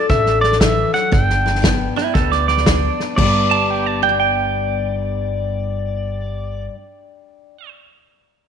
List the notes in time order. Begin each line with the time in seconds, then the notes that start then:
Already playing: D4 F#4 A4
0.09 A1 A2 E5, kick, snare
0.26 snare
0.41 D5, snare
0.52 snare
0.60 E3 E5, kick, snare, hi-hat pedal
0.94 F#3 F#5, snare
1.12 G1 G2 D4 G5, kick, snare
1.30 snare
1.46 B4, snare
1.55 snare
1.62 G3 B3, kick, snare, hi-hat pedal
1.96 E4 B4, snare
2.14 D2 D3 A4, kick, snare
2.32 D5, snare
2.48 D5, snare
2.57 snare
2.66 G3 D4, kick, snare, hi-hat pedal
3.00 B4, snare
3.16 G1 G2 G3 D5, kick, crash
3.21 B3 D4
3.26 B4
3.51 A5
3.70 G5
3.87 A5
4.03 D5 G5
4.09 G5
4.20 G5